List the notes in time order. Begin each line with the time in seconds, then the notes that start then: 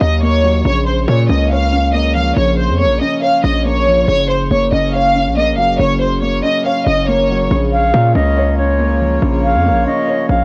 Already playing: D#3 F#3 A#3 D#4 D#5
0.01 D#2 D#4 D#5
0.22 A#3 C#5
0.44 F#3
0.65 A#1 C#3 C#5
0.87 C5
1.08 A#2 A#3 C#5
1.29 C#2 C#4 D#5
1.51 C#5 F5
1.73 C#4
1.94 A#3 D#5
2.15 F3 F5
2.36 A#1 C#3 C#5
2.58 C5
2.69 F2
2.79 A#3 C#5
2.85 A#1
3.01 C#4 D#5
3.22 C#5 F5
3.44 A#1 C#4 D#5
3.65 A#3 C#5
3.87 F3
4.07 F#1 C#3 C#5
4.29 C5
4.51 F#1 A#3 C#5
4.72 F#1 C#4 D#5
4.93 C#5 F5
5.15 C#4
5.26 A#1
5.37 A#3 D#5
5.53 F#1
5.57 F#3 F5
5.79 F#1 C#3 C#5
6.01 C5
6.22 A#3 C#5
6.43 C#4 D#5
6.65 C#5 F5
6.87 F#1 C#4 D#5
7.08 A#3 C#5
7.30 F#3
7.51 A#1 C#3 A#3 F4 C#5
7.72 F5
7.94 A#2 A#3
8.15 C#2 C#4 D#5
8.37 C#5
8.58 C#4 C#5
8.79 A#3
9.01 F3
9.22 A#1 C#3
9.44 F5
9.55 F2
9.66 A#3
9.71 A#1
9.87 C#4 D#5
10.08 C#5
10.29 A#1 C#4 F5